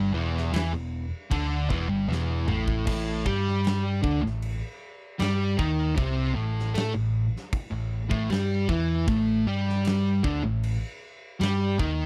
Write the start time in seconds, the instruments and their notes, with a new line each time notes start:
Already playing: picked electric bass G1, distorted electric guitar G2 G3
0.13 picked electric bass E1, distorted electric guitar E2 E3
0.37 snare
0.52 picked electric bass E2, distorted electric guitar E3 E4, snare, crash
0.72 picked electric bass E1, distorted electric guitar E2
1.30 picked electric bass D2, distorted electric guitar D3 D4, kick, crash
1.69 picked electric bass E1, distorted electric guitar E2 E3, kick
1.88 picked electric bass G1, distorted electric guitar G2 G3
2.08 picked electric bass E1, distorted electric guitar E2 E3, snare
2.48 picked electric bass A1, distorted electric guitar A2 A3, mid tom
2.68 kick
2.86 picked electric bass A1, distorted electric guitar A2 A3, kick, crash
3.25 picked electric bass G2, distorted electric guitar G3 G4, kick
3.48 snare
3.64 snare, crash
4.03 picked electric bass D2, distorted electric guitar D3 D4, kick
4.22 picked electric bass A1, distorted electric guitar A2
4.26 snare
4.42 crash
5.19 picked electric bass G2, distorted electric guitar G3 G4, snare, crash
5.58 picked electric bass D#2, distorted electric guitar D#3 D#4, kick
5.96 picked electric bass C2, distorted electric guitar C3 C4, kick, crash
6.35 picked electric bass A1, distorted electric guitar A2 A3
6.59 snare
6.74 picked electric bass A2, distorted electric guitar A3 A4, snare, crash
6.94 picked electric bass A1, distorted electric guitar A2
7.36 snare
7.53 kick, crash
7.71 picked electric bass A1, distorted electric guitar A2
8.09 picked electric bass A1, distorted electric guitar A2 A3, kick
8.30 picked electric bass G2, distorted electric guitar G3 G4, snare, crash
8.68 picked electric bass E2, distorted electric guitar E3 E4, kick
9.07 picked electric bass A1, distorted electric guitar A2 A3, kick, crash
9.46 picked electric bass G2, distorted electric guitar G3 G4
9.69 snare
9.85 snare, crash
10.23 picked electric bass D2, distorted electric guitar D3 D4, kick
10.43 picked electric bass A1, distorted electric guitar A2
10.63 crash
11.40 picked electric bass G2, distorted electric guitar G3 G4, snare, crash
11.78 picked electric bass D#2, distorted electric guitar D#3 D#4, kick